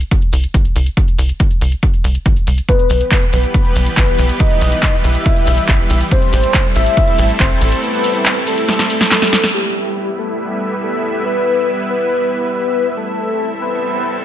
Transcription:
0.01 closed hi-hat, maracas
0.11 kick, closed hi-hat, maracas
0.21 closed hi-hat, maracas
0.33 analog synth bass C2, open hi-hat, maracas
0.44 closed hi-hat, maracas
0.54 analog synth bass A1, kick, closed hi-hat, maracas
0.65 closed hi-hat, maracas
0.76 analog synth bass C2, open hi-hat, maracas
0.86 closed hi-hat, maracas
0.97 kick, closed hi-hat, maracas
1.08 closed hi-hat, maracas
1.18 analog synth bass C2, open hi-hat, maracas
1.29 closed hi-hat, maracas
1.40 kick, closed hi-hat, maracas
1.51 closed hi-hat, maracas
1.61 analog synth bass C2, open hi-hat, maracas
1.71 closed hi-hat, maracas
1.82 kick, closed hi-hat, maracas
1.94 closed hi-hat, maracas
2.04 analog synth bass C2, open hi-hat, maracas
2.15 closed hi-hat, maracas
2.25 analog synth bass A1, kick, closed hi-hat, maracas
2.36 closed hi-hat, maracas
2.47 analog synth bass C2, open hi-hat, maracas
2.58 closed hi-hat, maracas
2.68 supersaw synth E3 G3 B3 G4 B4, soft synth lead B4, kick, closed hi-hat, maracas
2.79 closed hi-hat, maracas
2.89 analog synth bass B1, open hi-hat, maracas
3.01 closed hi-hat, maracas
3.11 kick, clap, closed hi-hat, maracas
3.22 closed hi-hat, maracas
3.33 analog synth bass B1, soft synth lead B4, open hi-hat, maracas
3.43 closed hi-hat, maracas
3.54 kick, closed hi-hat, maracas
3.64 closed hi-hat, maracas
3.76 analog synth bass B1, open hi-hat, maracas
3.86 closed hi-hat, maracas
3.97 analog synth bass A1, soft synth lead B4, kick, clap, closed hi-hat, maracas
4.08 closed hi-hat, maracas
4.18 analog synth bass B1, open hi-hat, maracas
4.29 closed hi-hat, maracas
4.40 soft synth lead D#5, kick, closed hi-hat, maracas
4.51 closed hi-hat, maracas
4.61 analog synth bass B1, open hi-hat, maracas
4.72 closed hi-hat, maracas
4.83 kick, clap, closed hi-hat, maracas
4.94 closed hi-hat, maracas
5.04 analog synth bass B1, soft synth lead E5, open hi-hat, maracas
5.15 closed hi-hat, maracas
5.26 kick, closed hi-hat, maracas
5.36 closed hi-hat, maracas
5.47 analog synth bass B1, open hi-hat, maracas
5.58 closed hi-hat, maracas
5.68 analog synth bass A1, kick, clap, closed hi-hat, maracas
5.79 closed hi-hat, maracas
5.90 analog synth bass B1, open hi-hat, maracas
6.01 closed hi-hat, maracas
6.11 supersaw synth A3 C4 E4 A4, soft synth lead C5, kick, closed hi-hat, maracas
6.22 closed hi-hat, maracas
6.33 analog synth bass A1, open hi-hat, maracas
6.43 closed hi-hat, maracas
6.54 kick, clap, closed hi-hat, maracas
6.65 closed hi-hat, maracas
6.76 analog synth bass A1, soft synth lead E5, open hi-hat, maracas
6.86 closed hi-hat, maracas
6.97 kick, closed hi-hat, maracas
7.08 closed hi-hat, maracas
7.18 analog synth bass A1, open hi-hat, maracas
7.29 closed hi-hat, maracas
7.40 analog synth bass G1, soft synth lead C5, kick, clap, closed hi-hat, maracas
7.51 closed hi-hat, maracas
7.61 analog synth bass A1, open hi-hat, maracas
7.72 closed hi-hat, maracas
7.83 soft synth lead B4, closed hi-hat, maracas
7.93 closed hi-hat, maracas
8.04 open hi-hat, maracas
8.15 closed hi-hat, maracas
8.26 clap, closed hi-hat, maracas
8.36 closed hi-hat, maracas
8.47 soft synth lead A4, open hi-hat, maracas
8.57 closed hi-hat, maracas
8.68 snare, closed hi-hat, maracas
8.79 snare, closed hi-hat, maracas
8.90 open hi-hat, maracas
9.01 snare, closed hi-hat, maracas
9.11 snare, clap, closed hi-hat, maracas
9.22 snare, closed hi-hat, maracas
9.33 snare, open hi-hat, maracas
9.43 snare, closed hi-hat, maracas
9.54 supersaw synth G3 B3 E4 B4 E5, soft synth lead G4
10.19 soft synth lead A4
10.83 soft synth lead A4
11.26 soft synth lead B4
11.90 soft synth lead B4
12.97 supersaw synth G3 C4 E4 A4 E5, soft synth lead A4
13.61 soft synth lead B4

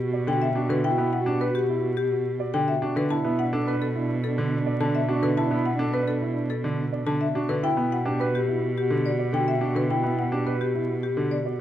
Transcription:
Already playing: cello B2
0.04 french horn F#4
0.13 grand piano D5
0.27 grand piano D3, marimba G5
0.33 french horn F#4
0.42 marimba E5
0.55 grand piano D4 F#4
0.62 french horn F#4
0.69 grand piano D3, marimba B4
0.84 grand piano E4, marimba G5
0.91 french horn F#4
0.98 grand piano B3 E4
1.13 marimba F#5
1.21 french horn F#4
1.26 grand piano D4 G4
1.41 grand piano B4, marimba B4
1.50 french horn F#4
1.55 marimba G4
1.69 grand piano E4
1.79 french horn F#4
1.97 marimba G4
2.09 french horn F#4
2.38 french horn F#4, grand piano D5
2.54 grand piano D3, marimba G5
2.67 french horn F#4, marimba E5
2.82 grand piano D4 F#4
2.96 grand piano D3, marimba B4
3.10 cello B2, french horn D4, grand piano E4, marimba A5
3.24 grand piano B3 E4
3.39 french horn D4, marimba F#5
3.53 grand piano D4 A4
3.67 french horn D4, grand piano B4, marimba B4
3.82 marimba A4
3.96 french horn D4, grand piano E4
4.24 french horn D4, marimba A4
4.38 grand piano D3
4.57 french horn D4
4.66 grand piano D5
4.80 grand piano D3, marimba A5
4.86 french horn D4
4.95 marimba E5
5.08 grand piano D4 F#4
5.15 french horn D4
5.22 grand piano D3, marimba B4
5.37 grand piano E4, marimba A5
5.45 french horn D4
5.51 grand piano B3 E4
5.66 marimba F#5
5.74 french horn D4
5.79 grand piano D4 A4
5.94 marimba B4, grand piano B4
6.03 french horn D4
6.08 marimba A4
6.22 grand piano E4
6.32 french horn D4
6.50 marimba A4
6.62 grand piano D3, french horn D4
6.91 french horn D4, grand piano D5
7.06 grand piano D3, marimba A5
7.20 french horn D4, marimba E5
7.35 grand piano D4 F#4
7.49 grand piano D3, marimba B4
7.63 cello B2, grand piano E4, french horn F#4, marimba G5
7.77 grand piano B3 E4
7.92 french horn F#4, marimba F#5
8.06 grand piano D4 G4
8.20 french horn F#4, grand piano B4, marimba B4
8.35 marimba G4
8.48 grand piano E4, french horn F#4
8.78 french horn F#4, marimba G4
8.90 grand piano D3
9.06 marimba D5
9.10 french horn F#4
9.19 grand piano D5
9.33 grand piano D3, marimba G5
9.39 french horn F#4
9.48 marimba E5
9.61 grand piano D4 F#4
9.68 french horn F#4
9.75 grand piano D3, marimba B4
9.90 grand piano E4, marimba G5
9.98 french horn F#4
10.03 grand piano B3 E4
10.19 marimba F#5
10.27 french horn F#4
10.32 grand piano D4 G4
10.46 grand piano B4, marimba B4
10.56 french horn F#4
10.61 marimba G4
10.75 grand piano E4
10.85 french horn F#4
11.03 marimba G4
11.15 grand piano D3, french horn F#4
11.31 marimba D5
11.44 french horn F#4, grand piano D5

